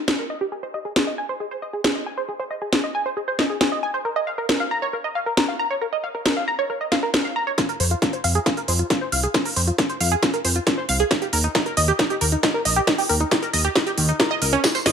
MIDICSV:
0, 0, Header, 1, 4, 480
1, 0, Start_track
1, 0, Key_signature, -4, "minor"
1, 0, Tempo, 441176
1, 566, Time_signature, 4, 2, 24, 8
1, 16234, End_track
2, 0, Start_track
2, 0, Title_t, "Synth arpeggio sound"
2, 0, Program_c, 0, 84
2, 86, Note_on_c, 0, 63, 77
2, 200, Note_off_c, 0, 63, 0
2, 205, Note_on_c, 0, 70, 75
2, 288, Note_off_c, 0, 70, 0
2, 326, Note_on_c, 0, 75, 93
2, 408, Note_off_c, 0, 75, 0
2, 445, Note_on_c, 0, 67, 70
2, 495, Note_off_c, 0, 67, 0
2, 565, Note_on_c, 0, 68, 80
2, 615, Note_off_c, 0, 68, 0
2, 685, Note_on_c, 0, 72, 74
2, 735, Note_off_c, 0, 72, 0
2, 806, Note_on_c, 0, 75, 72
2, 855, Note_off_c, 0, 75, 0
2, 925, Note_on_c, 0, 68, 74
2, 1008, Note_off_c, 0, 68, 0
2, 1046, Note_on_c, 0, 68, 77
2, 1160, Note_off_c, 0, 68, 0
2, 1165, Note_on_c, 0, 75, 75
2, 1248, Note_off_c, 0, 75, 0
2, 1285, Note_on_c, 0, 80, 95
2, 1368, Note_off_c, 0, 80, 0
2, 1406, Note_on_c, 0, 72, 73
2, 1455, Note_off_c, 0, 72, 0
2, 1525, Note_on_c, 0, 68, 74
2, 1575, Note_off_c, 0, 68, 0
2, 1646, Note_on_c, 0, 72, 72
2, 1695, Note_off_c, 0, 72, 0
2, 1765, Note_on_c, 0, 75, 75
2, 1815, Note_off_c, 0, 75, 0
2, 1886, Note_on_c, 0, 68, 76
2, 1969, Note_off_c, 0, 68, 0
2, 2006, Note_on_c, 0, 68, 80
2, 2120, Note_off_c, 0, 68, 0
2, 2126, Note_on_c, 0, 75, 73
2, 2209, Note_off_c, 0, 75, 0
2, 2246, Note_on_c, 0, 80, 95
2, 2328, Note_off_c, 0, 80, 0
2, 2366, Note_on_c, 0, 72, 70
2, 2415, Note_off_c, 0, 72, 0
2, 2486, Note_on_c, 0, 68, 80
2, 2535, Note_off_c, 0, 68, 0
2, 2606, Note_on_c, 0, 72, 73
2, 2655, Note_off_c, 0, 72, 0
2, 2726, Note_on_c, 0, 75, 74
2, 2775, Note_off_c, 0, 75, 0
2, 2846, Note_on_c, 0, 68, 72
2, 2928, Note_off_c, 0, 68, 0
2, 2966, Note_on_c, 0, 68, 75
2, 3080, Note_off_c, 0, 68, 0
2, 3086, Note_on_c, 0, 75, 79
2, 3169, Note_off_c, 0, 75, 0
2, 3206, Note_on_c, 0, 80, 102
2, 3289, Note_off_c, 0, 80, 0
2, 3326, Note_on_c, 0, 72, 74
2, 3376, Note_off_c, 0, 72, 0
2, 3446, Note_on_c, 0, 68, 78
2, 3496, Note_off_c, 0, 68, 0
2, 3566, Note_on_c, 0, 72, 74
2, 3616, Note_off_c, 0, 72, 0
2, 3686, Note_on_c, 0, 75, 72
2, 3736, Note_off_c, 0, 75, 0
2, 3806, Note_on_c, 0, 68, 73
2, 3889, Note_off_c, 0, 68, 0
2, 3926, Note_on_c, 0, 68, 76
2, 4040, Note_off_c, 0, 68, 0
2, 4046, Note_on_c, 0, 75, 74
2, 4129, Note_off_c, 0, 75, 0
2, 4166, Note_on_c, 0, 80, 99
2, 4249, Note_off_c, 0, 80, 0
2, 4286, Note_on_c, 0, 72, 72
2, 4336, Note_off_c, 0, 72, 0
2, 4406, Note_on_c, 0, 70, 79
2, 4455, Note_off_c, 0, 70, 0
2, 4526, Note_on_c, 0, 75, 75
2, 4575, Note_off_c, 0, 75, 0
2, 4646, Note_on_c, 0, 77, 74
2, 4696, Note_off_c, 0, 77, 0
2, 4766, Note_on_c, 0, 70, 73
2, 4849, Note_off_c, 0, 70, 0
2, 4886, Note_on_c, 0, 70, 81
2, 5000, Note_off_c, 0, 70, 0
2, 5006, Note_on_c, 0, 77, 75
2, 5089, Note_off_c, 0, 77, 0
2, 5126, Note_on_c, 0, 82, 99
2, 5209, Note_off_c, 0, 82, 0
2, 5246, Note_on_c, 0, 73, 78
2, 5295, Note_off_c, 0, 73, 0
2, 5366, Note_on_c, 0, 70, 78
2, 5416, Note_off_c, 0, 70, 0
2, 5486, Note_on_c, 0, 75, 69
2, 5536, Note_off_c, 0, 75, 0
2, 5606, Note_on_c, 0, 77, 74
2, 5656, Note_off_c, 0, 77, 0
2, 5726, Note_on_c, 0, 70, 74
2, 5809, Note_off_c, 0, 70, 0
2, 5846, Note_on_c, 0, 70, 77
2, 5960, Note_off_c, 0, 70, 0
2, 5966, Note_on_c, 0, 77, 70
2, 6049, Note_off_c, 0, 77, 0
2, 6086, Note_on_c, 0, 82, 100
2, 6169, Note_off_c, 0, 82, 0
2, 6207, Note_on_c, 0, 73, 71
2, 6256, Note_off_c, 0, 73, 0
2, 6327, Note_on_c, 0, 70, 81
2, 6376, Note_off_c, 0, 70, 0
2, 6447, Note_on_c, 0, 75, 76
2, 6496, Note_off_c, 0, 75, 0
2, 6567, Note_on_c, 0, 77, 72
2, 6616, Note_off_c, 0, 77, 0
2, 6687, Note_on_c, 0, 70, 69
2, 6769, Note_off_c, 0, 70, 0
2, 6807, Note_on_c, 0, 70, 77
2, 6920, Note_off_c, 0, 70, 0
2, 6927, Note_on_c, 0, 77, 74
2, 7009, Note_off_c, 0, 77, 0
2, 7046, Note_on_c, 0, 82, 102
2, 7129, Note_off_c, 0, 82, 0
2, 7166, Note_on_c, 0, 73, 78
2, 7216, Note_off_c, 0, 73, 0
2, 7287, Note_on_c, 0, 70, 76
2, 7336, Note_off_c, 0, 70, 0
2, 7407, Note_on_c, 0, 75, 73
2, 7456, Note_off_c, 0, 75, 0
2, 7527, Note_on_c, 0, 77, 72
2, 7576, Note_off_c, 0, 77, 0
2, 7647, Note_on_c, 0, 70, 76
2, 7729, Note_off_c, 0, 70, 0
2, 7767, Note_on_c, 0, 70, 79
2, 7880, Note_off_c, 0, 70, 0
2, 7887, Note_on_c, 0, 77, 75
2, 7969, Note_off_c, 0, 77, 0
2, 8007, Note_on_c, 0, 82, 101
2, 8089, Note_off_c, 0, 82, 0
2, 8127, Note_on_c, 0, 73, 77
2, 8176, Note_off_c, 0, 73, 0
2, 8246, Note_on_c, 0, 65, 86
2, 8296, Note_off_c, 0, 65, 0
2, 8367, Note_on_c, 0, 70, 75
2, 8416, Note_off_c, 0, 70, 0
2, 8487, Note_on_c, 0, 72, 75
2, 8536, Note_off_c, 0, 72, 0
2, 8607, Note_on_c, 0, 65, 75
2, 8689, Note_off_c, 0, 65, 0
2, 8727, Note_on_c, 0, 65, 78
2, 8840, Note_off_c, 0, 65, 0
2, 8846, Note_on_c, 0, 72, 75
2, 8929, Note_off_c, 0, 72, 0
2, 8966, Note_on_c, 0, 77, 100
2, 9049, Note_off_c, 0, 77, 0
2, 9087, Note_on_c, 0, 68, 72
2, 9136, Note_off_c, 0, 68, 0
2, 9206, Note_on_c, 0, 65, 79
2, 9256, Note_off_c, 0, 65, 0
2, 9327, Note_on_c, 0, 70, 72
2, 9376, Note_off_c, 0, 70, 0
2, 9446, Note_on_c, 0, 72, 76
2, 9496, Note_off_c, 0, 72, 0
2, 9566, Note_on_c, 0, 65, 72
2, 9649, Note_off_c, 0, 65, 0
2, 9686, Note_on_c, 0, 65, 81
2, 9800, Note_off_c, 0, 65, 0
2, 9806, Note_on_c, 0, 72, 76
2, 9889, Note_off_c, 0, 72, 0
2, 9926, Note_on_c, 0, 77, 100
2, 10009, Note_off_c, 0, 77, 0
2, 10046, Note_on_c, 0, 68, 73
2, 10096, Note_off_c, 0, 68, 0
2, 10166, Note_on_c, 0, 65, 83
2, 10216, Note_off_c, 0, 65, 0
2, 10286, Note_on_c, 0, 70, 74
2, 10336, Note_off_c, 0, 70, 0
2, 10406, Note_on_c, 0, 72, 70
2, 10455, Note_off_c, 0, 72, 0
2, 10526, Note_on_c, 0, 65, 70
2, 10608, Note_off_c, 0, 65, 0
2, 10646, Note_on_c, 0, 65, 75
2, 10760, Note_off_c, 0, 65, 0
2, 10766, Note_on_c, 0, 72, 78
2, 10848, Note_off_c, 0, 72, 0
2, 10886, Note_on_c, 0, 77, 104
2, 10969, Note_off_c, 0, 77, 0
2, 11006, Note_on_c, 0, 68, 75
2, 11055, Note_off_c, 0, 68, 0
2, 11126, Note_on_c, 0, 65, 77
2, 11176, Note_off_c, 0, 65, 0
2, 11246, Note_on_c, 0, 70, 74
2, 11295, Note_off_c, 0, 70, 0
2, 11366, Note_on_c, 0, 72, 77
2, 11415, Note_off_c, 0, 72, 0
2, 11486, Note_on_c, 0, 65, 73
2, 11569, Note_off_c, 0, 65, 0
2, 11606, Note_on_c, 0, 65, 83
2, 11720, Note_off_c, 0, 65, 0
2, 11726, Note_on_c, 0, 72, 77
2, 11809, Note_off_c, 0, 72, 0
2, 11846, Note_on_c, 0, 77, 102
2, 11929, Note_off_c, 0, 77, 0
2, 11966, Note_on_c, 0, 68, 76
2, 12016, Note_off_c, 0, 68, 0
2, 12086, Note_on_c, 0, 63, 87
2, 12136, Note_off_c, 0, 63, 0
2, 12206, Note_on_c, 0, 67, 75
2, 12256, Note_off_c, 0, 67, 0
2, 12326, Note_on_c, 0, 70, 73
2, 12376, Note_off_c, 0, 70, 0
2, 12446, Note_on_c, 0, 63, 75
2, 12529, Note_off_c, 0, 63, 0
2, 12566, Note_on_c, 0, 63, 79
2, 12680, Note_off_c, 0, 63, 0
2, 12686, Note_on_c, 0, 70, 74
2, 12769, Note_off_c, 0, 70, 0
2, 12806, Note_on_c, 0, 75, 103
2, 12889, Note_off_c, 0, 75, 0
2, 12926, Note_on_c, 0, 67, 75
2, 12976, Note_off_c, 0, 67, 0
2, 13046, Note_on_c, 0, 63, 80
2, 13096, Note_off_c, 0, 63, 0
2, 13167, Note_on_c, 0, 67, 75
2, 13216, Note_off_c, 0, 67, 0
2, 13286, Note_on_c, 0, 70, 79
2, 13336, Note_off_c, 0, 70, 0
2, 13407, Note_on_c, 0, 63, 74
2, 13489, Note_off_c, 0, 63, 0
2, 13526, Note_on_c, 0, 63, 81
2, 13640, Note_off_c, 0, 63, 0
2, 13646, Note_on_c, 0, 70, 80
2, 13729, Note_off_c, 0, 70, 0
2, 13766, Note_on_c, 0, 75, 99
2, 13849, Note_off_c, 0, 75, 0
2, 13887, Note_on_c, 0, 67, 75
2, 13936, Note_off_c, 0, 67, 0
2, 14006, Note_on_c, 0, 63, 86
2, 14056, Note_off_c, 0, 63, 0
2, 14126, Note_on_c, 0, 67, 78
2, 14176, Note_off_c, 0, 67, 0
2, 14246, Note_on_c, 0, 70, 77
2, 14295, Note_off_c, 0, 70, 0
2, 14366, Note_on_c, 0, 63, 77
2, 14448, Note_off_c, 0, 63, 0
2, 14486, Note_on_c, 0, 63, 76
2, 14600, Note_off_c, 0, 63, 0
2, 14606, Note_on_c, 0, 70, 78
2, 14688, Note_off_c, 0, 70, 0
2, 14725, Note_on_c, 0, 75, 102
2, 14808, Note_off_c, 0, 75, 0
2, 14846, Note_on_c, 0, 67, 77
2, 14895, Note_off_c, 0, 67, 0
2, 14966, Note_on_c, 0, 63, 75
2, 15015, Note_off_c, 0, 63, 0
2, 15085, Note_on_c, 0, 67, 74
2, 15135, Note_off_c, 0, 67, 0
2, 15206, Note_on_c, 0, 51, 74
2, 15320, Note_off_c, 0, 51, 0
2, 15326, Note_on_c, 0, 63, 76
2, 15409, Note_off_c, 0, 63, 0
2, 15445, Note_on_c, 0, 70, 78
2, 15560, Note_off_c, 0, 70, 0
2, 15566, Note_on_c, 0, 75, 105
2, 15615, Note_off_c, 0, 75, 0
2, 15685, Note_on_c, 0, 70, 76
2, 15800, Note_off_c, 0, 70, 0
2, 15805, Note_on_c, 0, 61, 98
2, 15888, Note_off_c, 0, 61, 0
2, 15926, Note_on_c, 0, 68, 85
2, 15975, Note_off_c, 0, 68, 0
2, 16046, Note_on_c, 0, 72, 76
2, 16095, Note_off_c, 0, 72, 0
2, 16166, Note_on_c, 0, 75, 74
2, 16215, Note_off_c, 0, 75, 0
2, 16234, End_track
3, 0, Start_track
3, 0, Title_t, "Analog synth bass"
3, 0, Program_c, 1, 38
3, 8486, Note_on_c, 1, 41, 92
3, 8646, Note_off_c, 1, 41, 0
3, 8966, Note_on_c, 1, 41, 88
3, 9126, Note_off_c, 1, 41, 0
3, 9446, Note_on_c, 1, 41, 88
3, 9606, Note_off_c, 1, 41, 0
3, 9926, Note_on_c, 1, 36, 75
3, 10086, Note_off_c, 1, 36, 0
3, 10405, Note_on_c, 1, 41, 91
3, 10565, Note_off_c, 1, 41, 0
3, 10886, Note_on_c, 1, 41, 93
3, 11046, Note_off_c, 1, 41, 0
3, 11366, Note_on_c, 1, 41, 85
3, 11526, Note_off_c, 1, 41, 0
3, 11846, Note_on_c, 1, 36, 76
3, 12006, Note_off_c, 1, 36, 0
3, 12326, Note_on_c, 1, 39, 93
3, 12486, Note_off_c, 1, 39, 0
3, 12805, Note_on_c, 1, 39, 93
3, 12965, Note_off_c, 1, 39, 0
3, 13286, Note_on_c, 1, 39, 87
3, 13446, Note_off_c, 1, 39, 0
3, 13766, Note_on_c, 1, 34, 76
3, 13926, Note_off_c, 1, 34, 0
3, 14246, Note_on_c, 1, 39, 95
3, 14406, Note_off_c, 1, 39, 0
3, 14725, Note_on_c, 1, 39, 88
3, 14886, Note_off_c, 1, 39, 0
3, 15205, Note_on_c, 1, 39, 81
3, 15365, Note_off_c, 1, 39, 0
3, 15685, Note_on_c, 1, 37, 87
3, 15845, Note_off_c, 1, 37, 0
3, 16166, Note_on_c, 1, 32, 93
3, 16234, Note_off_c, 1, 32, 0
3, 16234, End_track
4, 0, Start_track
4, 0, Title_t, "Drums"
4, 86, Note_on_c, 9, 38, 103
4, 194, Note_off_c, 9, 38, 0
4, 1046, Note_on_c, 9, 38, 105
4, 1154, Note_off_c, 9, 38, 0
4, 2006, Note_on_c, 9, 38, 108
4, 2114, Note_off_c, 9, 38, 0
4, 2966, Note_on_c, 9, 38, 96
4, 3074, Note_off_c, 9, 38, 0
4, 3686, Note_on_c, 9, 38, 55
4, 3795, Note_off_c, 9, 38, 0
4, 3926, Note_on_c, 9, 38, 100
4, 4035, Note_off_c, 9, 38, 0
4, 4886, Note_on_c, 9, 38, 103
4, 4995, Note_off_c, 9, 38, 0
4, 5846, Note_on_c, 9, 38, 105
4, 5955, Note_off_c, 9, 38, 0
4, 6806, Note_on_c, 9, 38, 111
4, 6915, Note_off_c, 9, 38, 0
4, 7526, Note_on_c, 9, 38, 59
4, 7635, Note_off_c, 9, 38, 0
4, 7766, Note_on_c, 9, 38, 113
4, 7875, Note_off_c, 9, 38, 0
4, 8246, Note_on_c, 9, 36, 110
4, 8246, Note_on_c, 9, 38, 48
4, 8246, Note_on_c, 9, 42, 82
4, 8354, Note_off_c, 9, 36, 0
4, 8355, Note_off_c, 9, 38, 0
4, 8355, Note_off_c, 9, 42, 0
4, 8367, Note_on_c, 9, 42, 36
4, 8475, Note_off_c, 9, 42, 0
4, 8486, Note_on_c, 9, 46, 96
4, 8595, Note_off_c, 9, 46, 0
4, 8606, Note_on_c, 9, 42, 49
4, 8715, Note_off_c, 9, 42, 0
4, 8726, Note_on_c, 9, 36, 115
4, 8726, Note_on_c, 9, 38, 44
4, 8726, Note_on_c, 9, 42, 78
4, 8834, Note_off_c, 9, 36, 0
4, 8835, Note_off_c, 9, 38, 0
4, 8835, Note_off_c, 9, 42, 0
4, 8846, Note_on_c, 9, 42, 33
4, 8954, Note_off_c, 9, 42, 0
4, 8966, Note_on_c, 9, 46, 100
4, 9074, Note_off_c, 9, 46, 0
4, 9086, Note_on_c, 9, 42, 50
4, 9194, Note_off_c, 9, 42, 0
4, 9206, Note_on_c, 9, 36, 111
4, 9206, Note_on_c, 9, 38, 46
4, 9206, Note_on_c, 9, 42, 77
4, 9314, Note_off_c, 9, 36, 0
4, 9314, Note_off_c, 9, 38, 0
4, 9314, Note_off_c, 9, 42, 0
4, 9326, Note_on_c, 9, 42, 37
4, 9434, Note_off_c, 9, 42, 0
4, 9446, Note_on_c, 9, 46, 95
4, 9555, Note_off_c, 9, 46, 0
4, 9566, Note_on_c, 9, 42, 53
4, 9674, Note_off_c, 9, 42, 0
4, 9685, Note_on_c, 9, 36, 117
4, 9686, Note_on_c, 9, 38, 47
4, 9686, Note_on_c, 9, 42, 77
4, 9794, Note_off_c, 9, 36, 0
4, 9795, Note_off_c, 9, 38, 0
4, 9795, Note_off_c, 9, 42, 0
4, 9926, Note_on_c, 9, 46, 101
4, 10035, Note_off_c, 9, 46, 0
4, 10046, Note_on_c, 9, 42, 52
4, 10154, Note_off_c, 9, 42, 0
4, 10165, Note_on_c, 9, 36, 116
4, 10166, Note_on_c, 9, 38, 54
4, 10166, Note_on_c, 9, 42, 77
4, 10274, Note_off_c, 9, 36, 0
4, 10274, Note_off_c, 9, 38, 0
4, 10274, Note_off_c, 9, 42, 0
4, 10286, Note_on_c, 9, 46, 62
4, 10394, Note_off_c, 9, 46, 0
4, 10406, Note_on_c, 9, 46, 110
4, 10514, Note_off_c, 9, 46, 0
4, 10526, Note_on_c, 9, 42, 51
4, 10635, Note_off_c, 9, 42, 0
4, 10645, Note_on_c, 9, 36, 123
4, 10646, Note_on_c, 9, 38, 52
4, 10646, Note_on_c, 9, 42, 74
4, 10754, Note_off_c, 9, 36, 0
4, 10754, Note_off_c, 9, 38, 0
4, 10754, Note_off_c, 9, 42, 0
4, 10766, Note_on_c, 9, 42, 35
4, 10875, Note_off_c, 9, 42, 0
4, 10886, Note_on_c, 9, 46, 107
4, 10995, Note_off_c, 9, 46, 0
4, 11006, Note_on_c, 9, 42, 48
4, 11115, Note_off_c, 9, 42, 0
4, 11125, Note_on_c, 9, 36, 114
4, 11126, Note_on_c, 9, 38, 52
4, 11126, Note_on_c, 9, 42, 74
4, 11234, Note_off_c, 9, 36, 0
4, 11235, Note_off_c, 9, 38, 0
4, 11235, Note_off_c, 9, 42, 0
4, 11246, Note_on_c, 9, 42, 35
4, 11355, Note_off_c, 9, 42, 0
4, 11365, Note_on_c, 9, 46, 98
4, 11474, Note_off_c, 9, 46, 0
4, 11486, Note_on_c, 9, 42, 52
4, 11594, Note_off_c, 9, 42, 0
4, 11605, Note_on_c, 9, 36, 117
4, 11606, Note_on_c, 9, 38, 54
4, 11606, Note_on_c, 9, 42, 72
4, 11714, Note_off_c, 9, 36, 0
4, 11715, Note_off_c, 9, 38, 0
4, 11715, Note_off_c, 9, 42, 0
4, 11846, Note_on_c, 9, 46, 104
4, 11954, Note_off_c, 9, 46, 0
4, 11965, Note_on_c, 9, 42, 49
4, 12074, Note_off_c, 9, 42, 0
4, 12086, Note_on_c, 9, 36, 122
4, 12086, Note_on_c, 9, 38, 60
4, 12086, Note_on_c, 9, 42, 80
4, 12194, Note_off_c, 9, 36, 0
4, 12194, Note_off_c, 9, 38, 0
4, 12194, Note_off_c, 9, 42, 0
4, 12206, Note_on_c, 9, 42, 35
4, 12314, Note_off_c, 9, 42, 0
4, 12326, Note_on_c, 9, 46, 109
4, 12434, Note_off_c, 9, 46, 0
4, 12446, Note_on_c, 9, 42, 49
4, 12555, Note_off_c, 9, 42, 0
4, 12566, Note_on_c, 9, 36, 125
4, 12566, Note_on_c, 9, 38, 57
4, 12566, Note_on_c, 9, 42, 72
4, 12674, Note_off_c, 9, 36, 0
4, 12675, Note_off_c, 9, 38, 0
4, 12675, Note_off_c, 9, 42, 0
4, 12686, Note_on_c, 9, 42, 33
4, 12795, Note_off_c, 9, 42, 0
4, 12806, Note_on_c, 9, 46, 105
4, 12915, Note_off_c, 9, 46, 0
4, 12926, Note_on_c, 9, 42, 50
4, 13035, Note_off_c, 9, 42, 0
4, 13046, Note_on_c, 9, 36, 125
4, 13046, Note_on_c, 9, 38, 58
4, 13046, Note_on_c, 9, 42, 74
4, 13154, Note_off_c, 9, 36, 0
4, 13155, Note_off_c, 9, 38, 0
4, 13155, Note_off_c, 9, 42, 0
4, 13166, Note_on_c, 9, 42, 34
4, 13275, Note_off_c, 9, 42, 0
4, 13286, Note_on_c, 9, 46, 106
4, 13395, Note_off_c, 9, 46, 0
4, 13406, Note_on_c, 9, 42, 50
4, 13515, Note_off_c, 9, 42, 0
4, 13526, Note_on_c, 9, 36, 123
4, 13526, Note_on_c, 9, 38, 61
4, 13526, Note_on_c, 9, 42, 78
4, 13635, Note_off_c, 9, 36, 0
4, 13635, Note_off_c, 9, 38, 0
4, 13635, Note_off_c, 9, 42, 0
4, 13766, Note_on_c, 9, 46, 106
4, 13875, Note_off_c, 9, 46, 0
4, 13886, Note_on_c, 9, 42, 49
4, 13995, Note_off_c, 9, 42, 0
4, 14006, Note_on_c, 9, 36, 118
4, 14006, Note_on_c, 9, 38, 69
4, 14006, Note_on_c, 9, 42, 76
4, 14114, Note_off_c, 9, 36, 0
4, 14115, Note_off_c, 9, 38, 0
4, 14115, Note_off_c, 9, 42, 0
4, 14126, Note_on_c, 9, 46, 63
4, 14235, Note_off_c, 9, 46, 0
4, 14246, Note_on_c, 9, 46, 104
4, 14355, Note_off_c, 9, 46, 0
4, 14367, Note_on_c, 9, 42, 45
4, 14475, Note_off_c, 9, 42, 0
4, 14486, Note_on_c, 9, 36, 121
4, 14486, Note_on_c, 9, 38, 62
4, 14486, Note_on_c, 9, 42, 72
4, 14594, Note_off_c, 9, 36, 0
4, 14595, Note_off_c, 9, 38, 0
4, 14595, Note_off_c, 9, 42, 0
4, 14607, Note_on_c, 9, 42, 32
4, 14715, Note_off_c, 9, 42, 0
4, 14726, Note_on_c, 9, 46, 102
4, 14835, Note_off_c, 9, 46, 0
4, 14846, Note_on_c, 9, 42, 49
4, 14955, Note_off_c, 9, 42, 0
4, 14965, Note_on_c, 9, 36, 119
4, 14966, Note_on_c, 9, 38, 69
4, 14966, Note_on_c, 9, 42, 70
4, 15074, Note_off_c, 9, 36, 0
4, 15074, Note_off_c, 9, 38, 0
4, 15074, Note_off_c, 9, 42, 0
4, 15086, Note_on_c, 9, 42, 34
4, 15194, Note_off_c, 9, 42, 0
4, 15205, Note_on_c, 9, 46, 102
4, 15314, Note_off_c, 9, 46, 0
4, 15325, Note_on_c, 9, 42, 51
4, 15434, Note_off_c, 9, 42, 0
4, 15445, Note_on_c, 9, 36, 120
4, 15445, Note_on_c, 9, 38, 71
4, 15445, Note_on_c, 9, 42, 73
4, 15554, Note_off_c, 9, 36, 0
4, 15554, Note_off_c, 9, 38, 0
4, 15554, Note_off_c, 9, 42, 0
4, 15686, Note_on_c, 9, 46, 107
4, 15794, Note_off_c, 9, 46, 0
4, 15806, Note_on_c, 9, 42, 46
4, 15914, Note_off_c, 9, 42, 0
4, 15925, Note_on_c, 9, 36, 113
4, 15926, Note_on_c, 9, 38, 72
4, 15926, Note_on_c, 9, 42, 78
4, 15926, Note_on_c, 9, 54, 59
4, 16034, Note_off_c, 9, 36, 0
4, 16035, Note_off_c, 9, 38, 0
4, 16035, Note_off_c, 9, 42, 0
4, 16035, Note_off_c, 9, 54, 0
4, 16046, Note_on_c, 9, 42, 34
4, 16046, Note_on_c, 9, 54, 34
4, 16154, Note_off_c, 9, 42, 0
4, 16154, Note_off_c, 9, 54, 0
4, 16166, Note_on_c, 9, 38, 76
4, 16166, Note_on_c, 9, 46, 106
4, 16234, Note_off_c, 9, 38, 0
4, 16234, Note_off_c, 9, 46, 0
4, 16234, End_track
0, 0, End_of_file